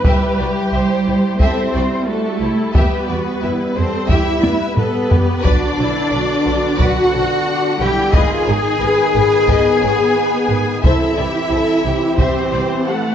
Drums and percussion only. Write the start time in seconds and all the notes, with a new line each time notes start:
0.05 taiko
1.40 taiko
2.75 taiko
4.09 taiko
4.43 taiko high
4.77 taiko low-mid
5.11 taiko low
5.45 taiko
6.79 taiko
8.13 taiko
9.49 taiko
10.84 taiko
12.18 taiko